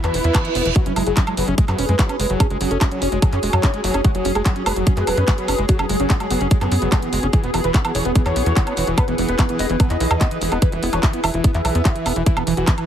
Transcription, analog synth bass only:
0.04 E2
0.14 E1
0.24 E2
0.55 E1
0.65 E1
0.86 F#1
0.96 F#1
1.07 F#1
1.37 F#1
1.48 F#1
1.68 F#2
1.78 E1
1.89 F#2
2.20 F#1
2.30 F#1
2.50 F#1
2.61 F#1
2.71 F#1
3.02 F#1
3.12 F#1
3.33 F#2
3.43 E1
3.53 F#2
3.84 F#1
3.94 F#1
4.15 F#1
4.25 F#1
4.35 F#1
4.66 F#1
4.76 F#1
4.97 F#2
5.07 E1
5.17 F#2
5.48 F#1
5.59 F#1
5.79 F#1
5.89 F#1
6.00 F#1
6.30 F#1
6.41 F#1
6.61 F#2
6.72 F#2
6.82 F#1
7.13 F#1
7.23 F#1
7.44 E1
7.54 E1
7.64 E1
7.95 E1
8.05 E1
8.26 E2
8.36 B1
8.46 E2
8.77 E1
8.87 E1
9.08 E1
9.18 E1
9.28 E1
9.59 E1
9.70 E1
9.90 E2
10.00 B1
10.11 E2
10.41 E1
10.52 E1
10.72 E1
10.83 E1
10.93 E1
11.24 E1
11.34 E1
11.54 E2
11.65 B1
11.75 E2
12.06 E1
12.16 E1
12.37 E1
12.47 E1
12.57 E1

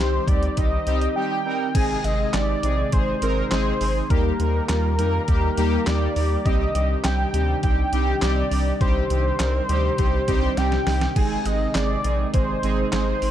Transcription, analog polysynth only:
0.00 G3 C4 D#4 G4
0.28 G3 C4 D#4 G4
0.57 G3 C4 D#4 G4
0.87 G3 C4 D#4 G4
1.16 G3 C4 D#4 G4
1.46 G3 C4 D#4 A#4
1.75 G#3 C4 D#4 G#4
2.04 G#3 C4 D#4 G#4
2.34 G#3 C4 D#4 G4
2.63 G#3 C4 D#4 G#4
2.93 G#3 C4 D#4 G#4
3.22 G#3 C4 D#4 A#4
3.52 G#3 C4 D#4 G#4
3.81 G#3 C4 D#4 G#4
4.10 G3 A#3 D#4 G4
4.40 G3 A#3 D#4 A#4
4.69 G3 A#3 D#4 F4
4.99 G3 A#3 D#4 A#4
5.28 G3 A#3 D#4 G4
5.57 G3 A#3 D#4 G4
5.87 G3 A#3 D#4 G4
6.16 G3 A#3 D#4 G4
6.46 G3 C4 D#4 G4
6.75 G3 C4 D#4 G4
7.05 G3 C4 D#4 G4
7.34 G3 C4 D#4 G4
7.63 G3 C4 D#4 G4
7.93 G3 C4 D#4 G4
8.22 G3 C4 D#4 G4
8.51 G3 C4 D#4 G4
8.81 G3 C4 D#4 G4
9.10 G3 C4 D#4 G4
9.40 G3 C4 D#4 A#4
9.69 G3 C4 D#4 G4
9.98 G3 C4 D#4 G4
10.28 G3 C4 D#4 G4
10.57 G3 C4 D#4 G4
10.87 G3 C4 D#4 G4
11.16 G#3 C4 D#4 G#4
11.46 G#3 C4 D#4 G#4
11.75 G#3 C4 D#4 G#4
12.04 G#3 C4 D#4 G#4
12.34 G#3 C4 D#4 G#4
12.63 G#3 C4 D#4 G#4
12.93 G#3 C4 D#4 G#4
13.22 G#3 C4 D#4 G#4

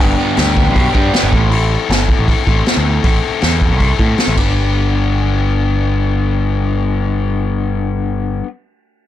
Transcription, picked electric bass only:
0.00 G1
0.38 D2
0.67 B1
0.95 G2
1.23 G1
1.33 A1
1.90 G1
2.19 A1
2.47 A1
2.77 D2
3.05 A1
3.43 E2
3.70 C2
4.00 A2
4.28 A1
4.37 G1

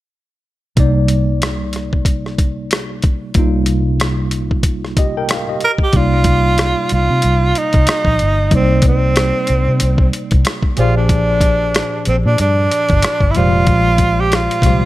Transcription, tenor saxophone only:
5.64 A#4
5.83 G4
5.97 F4
6.93 F4
7.58 D#4
8.55 C4
8.88 C4
10.79 F4
10.97 D4
12.08 C4
12.26 D4
12.41 D4
13.31 E4
13.37 F4
14.21 G4
14.35 F4

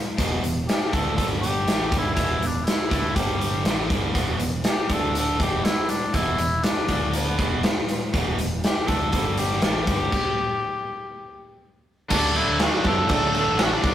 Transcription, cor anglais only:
0.67 G4
0.93 A4
1.17 A4
1.41 G4
1.98 E4
2.13 E4
2.47 D4
2.64 E4
2.98 E4
3.15 G4
4.68 G4
4.93 A4
5.19 A4
5.42 G4
5.64 E4
5.90 D4
6.15 E4
6.64 D4
7.14 B3
8.64 G4
8.87 A4
9.12 A4
9.38 G4
9.63 G4
12.14 D4
12.37 E4
12.63 F#4
12.87 A4
13.14 A4
13.37 A4
13.64 F#4
13.74 D4

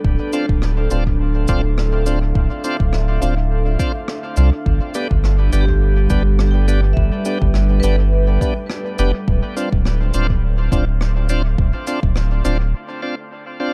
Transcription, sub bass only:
0.04 D1
0.49 D1
0.91 D1
1.49 D1
2.35 D1
2.80 D1
3.22 D1
4.37 C2
4.66 G1
5.11 G1
5.52 G1
6.10 G1
6.97 G1
7.41 G1
7.83 G1
8.99 F1
9.28 D1
9.72 D1
10.14 D1
10.72 D1
11.58 D1
12.03 D1
12.45 D1

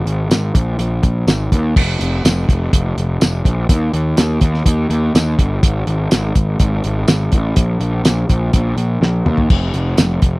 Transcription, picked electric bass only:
0.06 G#1
0.30 G#1
0.55 A#1
0.79 A#1
1.03 A#1
1.27 G#1
1.52 D#2
1.76 F1
2.01 F1
2.25 F1
2.49 F1
2.73 F1
2.98 F1
3.22 F1
3.45 A#1
3.69 D#2
3.93 D#2
4.18 D#2
4.41 D#2
4.66 D#2
4.90 D#2
5.15 D#2
5.39 G1
5.63 G#1
5.87 G#1
6.12 G#1
6.36 G#1
6.60 G#1
6.85 G#1
7.09 G#1
7.33 A1
7.57 A#1
7.80 A#1
8.04 A#1
8.30 A#1
8.54 A#1
8.77 A#1
9.01 A#1
9.26 D#2
9.50 F1
9.74 F1
9.98 F1
10.22 F1

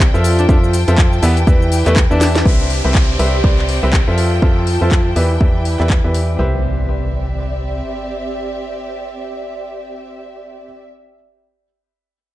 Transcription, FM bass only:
Already playing: C2
0.14 F2
0.49 F2
0.88 F2
1.23 E2
1.47 E2
1.86 E2
2.11 E2
2.46 C2
2.85 C2
3.19 C2
3.44 C2
3.83 C2
4.08 F2
4.42 F2
4.81 F2
5.16 E2
5.41 E2
5.80 E2
6.04 E2
6.39 C2

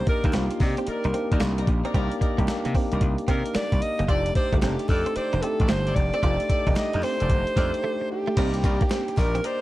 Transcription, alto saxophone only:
0.09 A#4
0.36 F4
0.63 G4
0.89 A#4
3.30 A#4
3.56 D5
3.82 D#5
4.05 D5 D#5
4.36 C5
4.58 F#4 G4
4.89 A4
5.16 C5
5.42 A4
5.69 C5
5.95 D5
6.76 D#5
7.03 C5
8.11 G4
9.19 A#4
9.46 C5

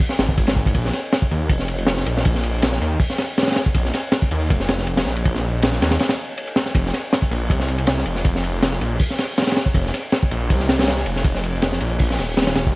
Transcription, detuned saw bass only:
0.19 G#1
0.75 A#1
1.31 D#2
1.49 F1
2.06 A#1
2.81 D#2
3.75 A#1
4.31 D#2
4.50 F1
5.06 A#1
5.81 D#2
6.75 F1
7.31 A#1
7.50 C2
8.06 F1
8.81 A#1
9.74 F1
10.31 A#1
10.50 C2
11.06 F1
11.81 A#1
12.19 D#1
12.56 D#1

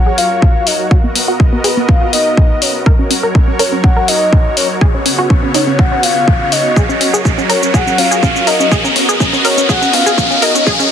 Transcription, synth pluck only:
0.06 G#4
0.91 F#4
1.04 B3
1.15 B3
1.28 F#4
1.40 B3
1.53 B3
1.64 G#4
1.77 B3
1.89 B3
2.01 F#4
2.86 A#4
2.99 C#4
3.11 C#4
3.23 A#4
3.35 C#4
3.48 C#4
3.59 A#4
3.72 C#4
3.84 C#4
3.97 A#4
4.81 G#4
4.94 C#4
5.06 C#4
5.19 F#4
5.30 C#4
5.43 C#4
5.54 D#4
5.67 C#4
5.79 C#4
5.92 C#4
6.76 G#4
6.89 C#4
7.01 C#4
7.14 G#4
7.25 C#4
7.38 C#4
7.49 A#4
7.62 C#4
7.74 G#4
7.87 C#4
7.98 C#4
8.11 G#4
8.23 C#4
8.36 C#4
8.47 A#4
8.60 C#4
8.72 G#4
8.84 C#4
8.96 C#4
9.09 G#4
9.20 C#4
9.33 C#4
9.45 A#4
9.57 C#4
9.69 G#4
9.82 C#4
9.94 C#4
10.06 G#4
10.18 C#4
10.31 C#4
10.42 A#4
10.55 C#4
10.67 G#4
10.80 C#4

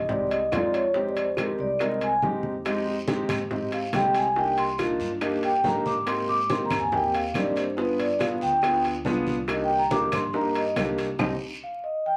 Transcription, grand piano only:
0.09 G#3 C4 D#4 G4
0.52 G#3 C4 D#4 F4
0.95 G#3 C4 D#4 G4
1.38 G#3 C4 D#4 G4
1.80 G#3 C4 D#4 A#4
2.23 G#3 C4 D#4 G4
2.65 G#3 C4 D#4 G4
3.08 G#3 C4 D#4 G4
3.51 G#3 C4 D#4 G4
3.94 G#3 C4 D#4 G4
4.36 A#3 D4 D#4 G4
4.78 A#3 D4 D#4 F4
5.22 A#3 D4 D#4 G4
5.64 A#3 D4 D#4 G4
6.06 A#3 C4 D#4 G4
6.50 A#3 C4 D#4 G4
6.93 A#3 C4 D#4 G4
7.35 A#3 C4 D#4 G4
7.77 B3 D4 F4 G#4
8.19 B3 D4 F4 G#4
8.63 B3 D4 F4 G#4
9.05 B3 D4 F4 G#4
9.48 A#3 D4 D#4 G4
9.91 A#3 D4 D#4 G4
10.34 A#3 D4 D#4 G4
10.77 A#3 D4 D#4 G4
11.19 C4 D#4 G4

